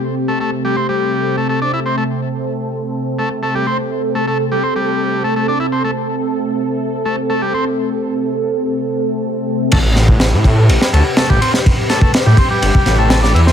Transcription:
<<
  \new Staff \with { instrumentName = "Analog synth pad" } { \time 4/4 \key a \minor \tempo 4 = 124 << { g'1 | a'1~ | a'1~ | a'1~ |
a'1 | g'1~ | g'1 | } \\ { <c a c'>1~ | <c a c'>1~ | <c a c'>1~ | <c a c'>1~ |
<c a c'>1 | <c b'>1~ | <c b'>1 | } >> }
  \new Staff \with { instrumentName = "Transistor combo organ" } { \time 4/4 \key a \minor r8 a16 a16 r16 g16 c'16 g4 a16 a16 d'16 e'16 c'16 | a16 r2 r16 a16 r16 a16 g16 c'16 r16 | r8 a16 a16 r16 g16 c'16 g4 a16 a16 d'16 e'16 c'16 | a16 r2 r16 a16 r16 a16 g16 c'16 r16 |
r1 | a16 r2 r16 a16 r16 a16 g16 c'16 r16 | r8 a16 a16 r16 g16 c'16 g4 a16 a16 d'16 e'16 c'16 | }
  \new Staff \with { instrumentName = "Detuned saw bass" } { \clef bass \time 4/4 \key a \minor r1 | r1 | r1 | r1 |
r1 | a,,4~ a,,16 a,8. a,,16 r16 d,16 r8 a,,16 r8 | r4 r16 a,16 r8 g,,16 r16 a,,4 e,16 r16 | }
  \new DrumStaff \with { instrumentName = "Drums" } \drummode { \time 4/4 r4 r4 r4 r4 | r4 r4 r4 r4 | r4 r4 r4 r4 | r4 r4 r4 r4 |
r4 r4 r4 r4 | <cymc bd cymr>8 <cymr sn>16 bd16 <cymr sn>8 <bd cymr>8 cymr16 sn16 cymr8 <cymr sn>16 bd16 cymr16 sn16 | <bd cymr>8 <cymr sn>16 bd16 <cymr sn>8 <bd cymr>8 cymr16 bd16 <cymr sn>8 <cymr sn>16 sn16 cymr16 sn16 | }
>>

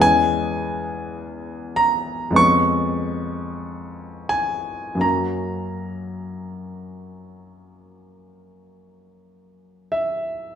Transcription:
<<
  \new Staff \with { instrumentName = "Grand piano" } { \time 4/4 \key fis \mixolydian \tempo 4 = 44 gis''4. ais''8 cis'''4. gis''8 | ais''2.~ ais''8 e''8 | }
  \new Staff \with { instrumentName = "Grand piano" } { \time 4/4 \key fis \mixolydian <e, gis b cis'>2 <eis, gis b cis'>2 | <fis, fis ais cis'>1 | }
>>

